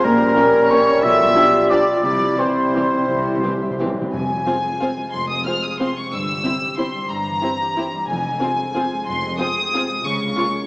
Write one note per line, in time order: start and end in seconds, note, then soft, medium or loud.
0.03 0.31 A#1 medium
0.03 1.05 A#2 medium
0.03 0.31 A#2 medium
0.03 2.01 G3 medium
0.03 1.05 C#4 medium
0.03 0.36 G4 medium
0.03 0.70 A#4 medium
0.03 0.71 A#4 medium
0.03 0.72 A#5 loud
0.20 1.18 G3 medium
0.29 0.95 C#4 medium
0.35 0.45 A#3 medium
0.35 0.45 C#4 medium
0.35 0.44 G4 medium
0.35 1.03 A#4 loud
0.35 0.54 C#5 medium
0.47 0.78 G4 medium
0.55 0.71 C#5 medium
0.63 1.05 C#6 medium
0.71 0.79 A#3 medium
0.71 0.79 C#4 medium
0.71 0.79 G4 medium
0.71 1.05 C#5 medium
0.71 1.03 C#5 medium
0.71 0.87 C#5 medium
0.71 1.02 C#6 medium
0.79 1.44 G4 medium
0.88 1.05 C#5 medium
0.96 1.05 C#4 medium
1.03 1.30 B1 medium
1.03 1.30 B2 medium
1.03 2.07 B2 medium
1.03 2.06 F4 medium
1.03 1.35 A4 medium
1.03 1.69 E5 loud
1.03 1.73 E5 loud
1.03 1.71 E6 loud
1.11 2.06 F3 medium
1.19 2.20 G3 medium
1.28 1.96 F4 soft
1.33 1.43 F3 medium
1.33 1.43 D4 medium
1.33 1.88 G4 medium
1.33 1.44 G4 medium
1.33 1.87 D5 medium
1.45 1.79 G4 medium
1.53 1.70 F5 medium
1.62 2.06 D6 medium
1.70 1.78 F3 medium
1.70 1.78 D4 medium
1.70 1.79 G4 medium
1.70 2.03 D5 medium
1.70 2.05 D5 medium
1.70 2.06 F5 soft
1.70 2.01 D6 medium
1.80 2.47 G4 medium
1.88 2.06 D5 medium
1.97 2.06 F4 medium
2.01 2.34 C2 medium
2.01 2.34 C3 medium
2.01 2.10 C3 soft
2.01 3.09 C3 medium
2.01 3.93 G3 medium
2.01 3.97 E4 medium
2.01 2.36 G4 medium
2.01 2.39 D5 medium
2.01 2.42 D5 medium
2.01 2.41 D6 medium
2.11 2.18 C3 soft
2.11 3.18 C4 soft
2.20 2.26 C3 soft
2.20 3.25 G3 soft
2.30 3.01 E4 soft
2.36 2.43 C3 soft
2.36 2.46 E3 medium
2.36 2.46 C4 medium
2.36 3.05 C4 medium
2.36 2.46 G4 medium
2.36 2.93 C5 medium
2.36 3.97 C6 medium
2.40 2.52 C3 soft
2.40 3.97 C5 medium
2.40 3.98 C5 medium
2.49 2.84 G4 medium
2.53 2.60 C3 soft
2.58 2.68 C3 soft
2.58 2.75 E5 medium
2.67 2.76 C3 soft
2.67 3.70 C6 medium
2.75 2.83 C3 soft
2.75 2.83 E3 medium
2.75 2.83 C4 medium
2.75 2.84 G4 medium
2.75 3.61 E5 soft
2.84 2.91 C3 soft
2.84 3.52 G4 soft
2.92 2.99 C3 medium
2.92 3.43 C5 medium
3.00 3.07 C3 medium
3.00 3.34 E4 soft
3.07 3.38 C2 medium
3.07 3.14 C3 medium
3.07 4.15 C3 medium
3.07 3.39 C3 medium
3.07 3.43 E4 medium
3.15 3.21 C3 medium
3.15 6.14 C4 soft
3.22 3.29 C3 medium
3.22 4.15 G3 soft
3.30 3.37 C3 medium
3.35 3.45 C3 medium
3.35 4.04 E4 soft
3.43 3.53 C3 medium
3.43 3.52 E3 medium
3.43 3.52 C4 medium
3.43 4.13 G4 medium
3.43 3.51 G4 medium
3.43 3.96 C5 medium
3.54 3.61 C3 medium
3.54 3.87 G4 medium
3.62 3.69 C3 medium
3.62 3.79 E5 medium
3.71 3.77 C3 medium
3.71 7.61 C6 soft
3.78 3.85 C3 medium
3.78 3.88 E3 medium
3.78 3.88 C4 medium
3.78 3.87 G4 soft
3.78 4.15 E5 soft
3.86 3.93 C3 loud
3.86 4.15 G4 soft
3.94 4.00 C3 medium
3.94 4.46 C5 soft
4.02 4.09 C3 medium
4.02 4.15 E4 soft
4.13 4.41 F1 medium
4.13 5.12 F2 medium
4.13 4.60 F2 medium
4.13 4.41 F2 medium
4.13 5.09 G#5 medium
4.29 4.96 G#3 soft
4.46 4.54 C4 soft
4.46 4.55 F4 soft
4.46 4.55 G#4 soft
4.46 4.80 C5 soft
4.46 4.55 C5 soft
4.64 5.63 G#4 soft
4.80 4.89 C4 soft
4.80 4.88 F4 medium
4.80 4.90 G#4 medium
4.80 5.46 C5 soft
4.80 4.90 C5 soft
4.97 5.96 G#3 soft
5.13 5.40 F1 medium
5.13 6.14 F2 medium
5.13 5.41 F2 medium
5.13 5.29 C6 medium
5.29 6.14 C3 soft
5.29 5.46 D#6 medium
5.45 5.53 C4 soft
5.45 5.54 F4 soft
5.45 5.54 G#4 soft
5.45 5.80 C5 soft
5.45 5.55 C5 soft
5.45 5.63 F6 medium
5.63 6.14 G#4 soft
5.63 5.80 D#6 medium
5.80 5.88 C4 soft
5.80 5.88 F4 soft
5.80 5.88 G#4 soft
5.80 5.89 C5 medium
5.80 6.44 C5 soft
5.80 5.97 C6 medium
5.97 6.14 G#3 soft
5.97 6.13 C#6 medium
6.12 6.39 G1 medium
6.12 6.39 G2 medium
6.12 7.09 G2 medium
6.12 6.78 E6 medium
6.29 6.94 G3 soft
6.44 6.52 C4 medium
6.44 6.52 E4 medium
6.44 6.53 G4 soft
6.44 6.53 C5 soft
6.44 6.77 C5 soft
6.61 7.60 G4 soft
6.78 6.86 C4 soft
6.78 6.86 E4 soft
6.78 6.86 G4 soft
6.78 6.86 C5 medium
6.78 7.42 C5 soft
6.78 7.09 C6 medium
6.95 7.93 G3 soft
7.09 7.37 G1 medium
7.09 7.37 G2 medium
7.09 8.10 G2 medium
7.09 8.09 A#5 medium
7.26 8.10 E3 soft
7.42 7.50 C4 soft
7.42 7.50 E4 soft
7.42 7.50 G4 soft
7.42 7.50 C5 soft
7.42 7.77 C5 medium
7.61 8.11 G4 medium
7.76 7.84 C4 soft
7.76 7.84 E4 medium
7.76 7.86 G4 soft
7.76 7.85 C5 soft
7.76 8.41 C5 soft
7.94 8.10 G3 soft
8.08 8.35 F1 medium
8.08 8.35 F2 medium
8.08 9.07 F2 medium
8.08 9.05 G#5 medium
8.25 8.91 G#3 soft
8.40 8.48 C4 medium
8.40 8.48 F4 soft
8.40 8.50 G#4 soft
8.40 8.50 C5 soft
8.40 8.74 C5 soft
8.58 9.55 G#4 soft
8.75 8.83 C4 medium
8.75 8.83 F4 medium
8.75 8.83 G#4 medium
8.75 9.38 C5 soft
8.75 8.83 C5 medium
8.92 9.88 G#3 soft
9.07 9.33 F1 medium
9.07 9.33 F2 medium
9.07 10.06 F2 medium
9.07 9.39 C6 medium
9.23 10.06 C3 soft
9.39 9.47 C4 medium
9.39 9.47 F4 medium
9.39 9.47 G#4 soft
9.39 9.72 C5 soft
9.39 9.48 C5 soft
9.39 10.03 D#6 loud
9.57 10.54 G#4 medium
9.74 9.82 C4 medium
9.74 9.82 F4 medium
9.74 9.82 G#4 medium
9.74 10.06 C5 soft
9.74 9.82 C5 medium
9.89 10.20 G#3 medium
10.05 10.31 C#2 medium
10.05 10.31 C#3 medium
10.05 10.67 C#3 medium
10.05 10.67 C#6 medium
10.21 10.67 G#3 soft
10.37 10.45 A#3 medium
10.37 10.45 F4 medium
10.37 10.46 G#4 soft
10.37 10.67 A#4 medium
10.37 10.46 C#5 medium
10.55 10.67 G#4 medium